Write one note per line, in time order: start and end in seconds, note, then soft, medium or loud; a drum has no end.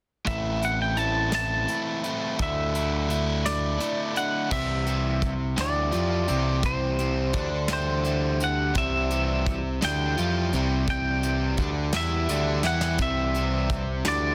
0.25 1.65 A1 medium
0.25 0.97 A2 medium
0.25 0.96 E3 medium
0.25 0.63 A3 medium
0.25 0.61 C4 medium
0.25 0.61 E4 loud
0.25 0.64 E5 medium
0.25 kick medium
0.25 closed hi-hat medium
0.61 0.98 A3 medium
0.61 0.98 C4 medium
0.61 0.99 E4 medium
0.61 0.81 F#5 medium
0.61 closed hi-hat medium
0.82 0.97 G5 medium
0.97 1.68 E3 medium
0.97 1.35 A3 medium
0.97 1.34 C4 medium
0.97 1.34 E4 medium
0.97 1.34 A5 medium
0.97 closed hi-hat soft
1.32 1.68 C4 medium
1.32 1.70 E4 medium
1.32 2.42 A5 medium
1.32 snare medium
1.32 closed hi-hat medium
1.36 1.68 A3 medium
1.68 2.39 E3 medium
1.68 2.04 A3 medium
1.68 2.03 C4 medium
1.68 2.03 E4 medium
1.68 closed hi-hat medium
2.03 2.38 A3 medium
2.03 2.38 C4 medium
2.03 2.41 E4 medium
2.03 closed hi-hat medium
2.39 3.77 D2 medium
2.39 3.07 D3 medium
2.39 2.75 A3 medium
2.39 2.74 D4 medium
2.39 2.72 E4 medium
2.39 3.79 E5 medium
2.39 kick medium
2.39 closed hi-hat medium
2.74 3.09 A3 medium
2.74 3.09 D4 medium
2.74 3.10 E4 medium
2.74 closed hi-hat medium
3.08 3.77 D3 medium
3.08 3.46 A3 medium
3.08 3.45 D4 medium
3.08 3.43 E4 medium
3.08 closed hi-hat medium
3.45 3.78 A3 medium
3.45 3.79 D4 medium
3.45 3.80 E4 medium
3.45 4.13 D5 medium
3.45 snare medium
3.45 closed hi-hat medium
3.78 4.49 D3 medium
3.78 4.15 A3 medium
3.78 4.15 D4 medium
3.78 4.13 E4 medium
3.78 closed hi-hat medium
4.14 4.50 A3 medium
4.14 4.50 D4 medium
4.14 4.49 E4 medium
4.14 4.50 F#5 medium
4.14 closed hi-hat medium
4.50 5.54 C2 medium
4.50 5.56 C3 medium
4.50 4.86 E3 medium
4.50 4.86 G3 medium
4.50 5.57 C4 loud
4.50 4.86 E4 medium
4.50 4.85 G4 medium
4.50 5.54 E5 medium
4.50 kick loud
4.50 crash medium
4.87 5.34 E3 medium
4.87 5.34 G3 medium
4.87 5.34 E4 medium
4.87 5.33 G4 medium
4.87 closed hi-hat medium
5.22 kick medium
5.22 closed hi-hat medium
5.57 5.91 D2 medium
5.57 5.91 D3 medium
5.57 5.91 E3 medium
5.57 5.91 G3 medium
5.57 5.92 D4 loud
5.57 5.92 E4 medium
5.57 5.93 G4 medium
5.57 snare loud
5.57 closed hi-hat medium
5.61 6.65 D5 medium
5.91 6.27 F2 medium
5.91 6.28 E3 medium
5.91 6.27 F3 medium
5.91 6.27 G3 medium
5.91 6.27 E4 medium
5.91 6.27 F4 medium
5.91 6.26 G4 medium
5.91 closed hi-hat medium
6.27 7.31 C2 medium
6.27 7.33 C3 medium
6.27 6.62 E3 medium
6.27 6.63 G3 medium
6.27 7.34 C4 medium
6.27 6.62 E4 medium
6.27 6.63 G4 medium
6.27 closed hi-hat medium
6.63 6.99 E3 medium
6.63 6.99 G3 medium
6.63 6.99 E4 medium
6.63 6.99 G4 medium
6.63 7.72 C5 medium
6.63 kick medium
6.63 closed hi-hat medium
6.99 7.46 E3 medium
6.99 7.46 G3 medium
6.99 7.46 E4 medium
6.99 7.46 G4 medium
6.99 closed hi-hat medium
7.33 8.72 D2 medium
7.33 8.74 D3 medium
7.33 8.75 D4 medium
7.33 kick medium
7.33 closed hi-hat medium
7.68 8.03 E3 medium
7.68 8.04 G3 medium
7.68 8.04 E4 medium
7.68 8.04 G4 medium
7.68 snare loud
7.68 closed hi-hat medium
7.73 8.45 C5 medium
8.04 8.40 E3 medium
8.04 8.41 G3 medium
8.04 8.40 E4 medium
8.04 8.39 G4 medium
8.04 closed hi-hat medium
8.40 8.75 E3 medium
8.40 8.75 G3 medium
8.40 8.76 E4 medium
8.40 8.76 G4 medium
8.40 8.77 F#5 medium
8.40 closed hi-hat medium
8.74 9.78 C2 medium
8.74 9.80 C3 medium
8.74 9.11 E3 medium
8.74 9.11 G3 medium
8.74 9.81 C4 loud
8.74 9.11 E4 medium
8.74 9.10 G4 medium
8.74 9.84 E5 medium
8.74 kick medium
8.74 closed hi-hat medium
9.11 9.58 E3 medium
9.11 9.58 G3 medium
9.11 9.58 E4 medium
9.11 9.58 G4 medium
9.11 closed hi-hat medium
9.46 kick medium
9.46 closed hi-hat medium
9.81 10.16 D2 loud
9.81 10.16 D3 medium
9.81 10.17 E3 medium
9.81 10.18 G3 medium
9.81 10.16 D4 loud
9.81 10.17 E4 medium
9.81 10.18 G4 medium
9.81 10.86 G5 medium
9.81 snare medium
9.81 closed hi-hat medium
10.17 10.51 F2 medium
10.17 10.53 E3 medium
10.17 10.52 F3 medium
10.17 10.54 G3 medium
10.17 10.53 E4 medium
10.17 10.52 F4 medium
10.17 10.54 G4 medium
10.17 closed hi-hat medium
10.53 11.55 C2 medium
10.53 11.58 C3 medium
10.53 10.87 E3 medium
10.53 10.88 G3 medium
10.53 11.58 C4 medium
10.53 10.88 E4 medium
10.53 10.88 G4 medium
10.53 closed hi-hat medium
10.88 11.24 E3 medium
10.88 11.24 G3 medium
10.88 11.22 E4 medium
10.88 11.22 G4 medium
10.88 11.96 G5 medium
10.88 kick loud
10.88 closed hi-hat medium
11.23 11.70 E3 medium
11.23 11.70 G3 medium
11.23 11.70 E4 medium
11.23 11.70 G4 medium
11.23 closed hi-hat medium
11.57 11.92 D2 loud
11.57 11.93 D3 medium
11.57 11.93 D4 medium
11.57 kick medium
11.57 closed hi-hat medium
11.93 12.27 E2 medium
11.93 12.28 E3 medium
11.93 12.29 G3 medium
11.93 12.29 E4 medium
11.93 12.29 G4 medium
11.93 12.66 E5 medium
11.93 snare loud
11.93 closed hi-hat medium
12.29 12.62 D2 medium
12.29 12.63 D3 medium
12.29 12.64 E3 medium
12.29 12.63 G3 medium
12.29 12.64 D4 loud
12.29 12.63 E4 medium
12.29 12.62 G4 medium
12.29 closed hi-hat medium
12.63 12.97 E2 medium
12.63 12.99 E3 medium
12.63 12.98 E3 medium
12.63 13.00 G3 medium
12.63 12.99 E4 medium
12.63 12.99 G4 medium
12.63 12.99 F#5 medium
12.63 snare medium
12.81 snare medium
12.98 14.02 C2 medium
12.98 14.05 C3 medium
12.98 13.35 E3 medium
12.98 13.35 G3 medium
12.98 14.05 C4 loud
12.98 13.35 E4 medium
12.98 13.34 G4 medium
12.98 14.08 E5 loud
12.98 kick medium
12.98 closed hi-hat medium
13.35 13.82 E3 medium
13.35 13.82 G3 medium
13.35 13.82 E4 medium
13.35 13.82 G4 medium
13.35 closed hi-hat medium
13.70 kick medium
13.70 closed hi-hat medium
14.05 14.35 D2 medium
14.05 14.35 D3 medium
14.05 14.35 E3 medium
14.05 14.35 G3 medium
14.05 14.35 D4 medium
14.05 14.35 E4 medium
14.05 14.35 G4 medium
14.05 14.35 D5 medium
14.05 snare loud
14.05 closed hi-hat medium